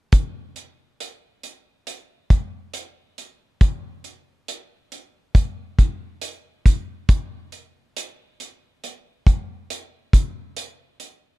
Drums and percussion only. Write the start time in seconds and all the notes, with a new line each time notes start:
0.12 kick, closed hi-hat
0.56 closed hi-hat
1.00 closed hi-hat
1.43 closed hi-hat
1.87 closed hi-hat
2.30 kick, closed hi-hat
2.74 closed hi-hat
3.18 closed hi-hat
3.61 kick, closed hi-hat
4.04 closed hi-hat
4.48 closed hi-hat
4.92 closed hi-hat
5.35 kick, closed hi-hat
5.79 kick, closed hi-hat
6.21 closed hi-hat
6.66 kick, closed hi-hat
7.09 kick, closed hi-hat
7.52 closed hi-hat
7.97 closed hi-hat
8.40 closed hi-hat
8.84 closed hi-hat
9.27 kick, closed hi-hat
9.70 closed hi-hat
10.13 kick, closed hi-hat
10.57 closed hi-hat
11.00 closed hi-hat